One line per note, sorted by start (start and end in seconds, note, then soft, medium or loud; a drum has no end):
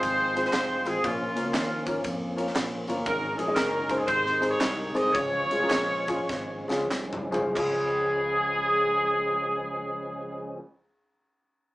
0.00 0.46 G#1 loud
0.00 3.02 F3 medium
0.00 1.02 G#3 medium
0.00 1.02 C4 medium
0.00 0.44 F4 medium
0.00 0.44 G#4 medium
0.00 0.44 C5 loud
0.00 kick loud
0.00 ride medium
0.00 tambourine medium
0.34 0.48 G#3 medium
0.34 0.48 C4 medium
0.34 0.49 F4 medium
0.34 0.49 G#4 medium
0.34 0.49 C5 medium
0.34 ride medium
0.34 tambourine medium
0.45 1.00 F4 medium
0.45 0.85 G#4 medium
0.45 0.84 C5 loud
0.45 snare soft
0.53 0.81 F1 loud
0.53 snare loud
0.53 clap loud
0.53 ride medium
0.53 tambourine loud
0.85 1.01 A1 medium
0.85 0.98 G#3 medium
0.85 0.98 C4 medium
0.85 0.99 F4 medium
0.85 1.04 G#4 loud
0.85 0.99 G#4 medium
0.85 0.99 C5 medium
0.85 ride medium
0.85 tambourine medium
1.03 1.32 A#1 loud
1.03 1.83 A#2 medium
1.03 1.53 A#3 medium
1.03 3.05 A#3 medium
1.03 1.54 C#4 medium
1.03 4.06 C#4 medium
1.03 1.53 F4 loud
1.03 kick loud
1.03 ride medium
1.03 tambourine medium
1.35 1.52 C#2 medium
1.35 1.42 A#3 medium
1.35 1.42 C#4 medium
1.35 1.43 F4 medium
1.35 1.43 A#4 medium
1.35 1.43 C#5 medium
1.35 ride medium
1.35 tambourine medium
1.44 1.61 A#3 medium
1.44 1.61 C#4 medium
1.44 1.61 F4 medium
1.44 1.61 A#4 medium
1.44 1.62 C#5 medium
1.54 1.98 D#2 loud
1.54 2.51 A#3 medium
1.54 2.52 C#4 medium
1.54 2.01 F4 medium
1.54 snare loud
1.54 clap loud
1.54 ride medium
1.54 tambourine loud
1.86 1.99 A#3 medium
1.86 2.00 C#4 medium
1.86 2.00 F4 medium
1.86 2.00 A#4 medium
1.86 2.00 C#5 medium
1.86 kick medium
1.86 ride medium
1.86 tambourine medium
2.04 2.48 F2 medium
2.04 kick loud
2.04 ride medium
2.04 tambourine medium
2.36 2.50 A#3 medium
2.36 2.50 C#4 medium
2.36 2.50 F4 medium
2.36 2.50 A#4 medium
2.36 2.51 C#5 loud
2.36 ride medium
2.36 tambourine medium
2.47 snare soft
2.55 2.84 A#1 loud
2.55 snare loud
2.55 clap loud
2.55 ride medium
2.55 tambourine loud
2.88 3.03 G1 medium
2.88 3.01 A#3 medium
2.88 3.01 C#4 medium
2.88 3.01 F4 medium
2.88 3.01 A#4 medium
2.88 3.02 C#5 loud
2.88 ride medium
2.88 tambourine medium
3.06 3.34 G#1 loud
3.06 3.86 G#2 medium
3.06 5.13 D#3 medium
3.06 5.13 G#3 medium
3.06 3.55 C#4 medium
3.06 3.55 D#4 medium
3.06 3.37 A#4 loud
3.06 kick loud
3.06 ride medium
3.06 tambourine medium
3.38 3.53 A#1 loud
3.38 3.45 G#3 medium
3.38 3.45 C#4 medium
3.38 3.46 D#4 medium
3.38 3.56 G#4 medium
3.38 3.46 G#4 medium
3.38 3.46 C#5 medium
3.38 ride medium
3.38 tambourine medium
3.47 3.64 G#3 medium
3.47 3.64 C#4 medium
3.47 3.64 D#4 medium
3.47 3.64 G#4 medium
3.47 3.64 D#5 medium
3.55 4.00 F#1 loud
3.55 4.04 C#4 medium
3.55 4.04 D#4 medium
3.55 3.98 A#4 loud
3.55 snare loud
3.55 clap loud
3.55 ride medium
3.55 tambourine loud
3.89 4.03 G#3 medium
3.89 4.03 C#4 medium
3.89 4.03 D#4 medium
3.89 4.03 G#4 medium
3.89 4.03 C5 loud
3.89 kick loud
3.89 ride medium
3.89 tambourine medium
3.97 4.07 G#4 medium
4.07 4.53 G#1 loud
4.07 4.92 G#2 medium
4.07 5.14 C3 medium
4.07 5.11 D#4 medium
4.07 4.51 G#4 medium
4.07 4.48 C5 loud
4.07 kick loud
4.07 ride medium
4.07 tambourine medium
4.26 snare soft
4.41 4.55 G#3 medium
4.41 4.55 C4 medium
4.41 4.55 D#4 medium
4.41 4.55 G#4 medium
4.41 4.55 C5 medium
4.41 ride medium
4.41 tambourine medium
4.49 5.11 G#4 medium
4.49 4.92 C#5 loud
4.60 4.90 C2 loud
4.60 snare loud
4.60 clap loud
4.60 ride medium
4.60 tambourine loud
4.94 5.11 C2 medium
4.94 5.09 G#3 medium
4.94 5.09 C4 medium
4.94 5.09 D#4 medium
4.94 5.09 G#4 medium
4.94 5.09 C5 medium
4.94 5.14 D#5 loud
4.94 ride medium
4.94 tambourine medium
5.13 5.46 C#2 loud
5.13 6.05 C#3 medium
5.13 7.54 F3 medium
5.13 7.54 G#3 medium
5.13 7.54 C#4 medium
5.13 6.87 F4 medium
5.13 6.88 G#4 medium
5.13 6.90 C#5 loud
5.13 kick loud
5.13 ride medium
5.13 tambourine medium
5.50 5.67 C2 medium
5.50 5.58 G#3 medium
5.50 5.58 C#4 medium
5.50 5.58 F4 medium
5.50 5.59 G#4 medium
5.50 5.59 C#5 medium
5.50 ride medium
5.50 tambourine medium
5.61 5.79 G#3 medium
5.61 5.80 C#4 medium
5.61 5.80 F4 medium
5.61 5.80 G#4 medium
5.61 5.80 A#4 medium
5.70 6.20 A#1 medium
5.70 snare loud
5.70 clap loud
5.70 ride medium
5.70 tambourine loud
6.07 6.23 G#3 loud
6.07 6.24 C#4 medium
6.07 6.24 F4 medium
6.07 6.24 G#4 medium
6.07 6.24 C#5 loud
6.07 kick loud
6.07 ride medium
6.07 tambourine medium
6.29 6.63 G#1 medium
6.29 kick loud
6.29 snare medium
6.29 tambourine medium
6.68 6.87 C#2 medium
6.68 6.84 G#3 medium
6.68 6.85 C#4 medium
6.68 6.85 F4 medium
6.68 6.85 G#4 medium
6.68 6.85 C#5 loud
6.68 snare medium
6.68 tambourine medium
6.91 7.27 C2 medium
6.91 snare medium
6.91 clap loud
6.91 tambourine loud
7.13 floor tom loud
7.31 7.53 C2 medium
7.31 7.49 G#3 medium
7.31 7.49 C#4 medium
7.31 7.49 F4 medium
7.31 7.49 G#4 medium
7.31 7.49 C5 medium
7.31 floor tom loud
7.31 tambourine medium
7.53 10.57 C#2 medium
7.53 10.58 C#2 loud
7.53 10.54 G#3 medium
7.53 10.56 C#4 medium
7.53 10.57 G#4 loud
7.53 kick loud
7.53 clap medium
7.53 crash medium
7.57 10.58 F3 medium
7.57 10.58 G#3 medium
7.57 10.58 C#4 medium
7.57 10.58 F4 medium
7.57 10.60 G#4 medium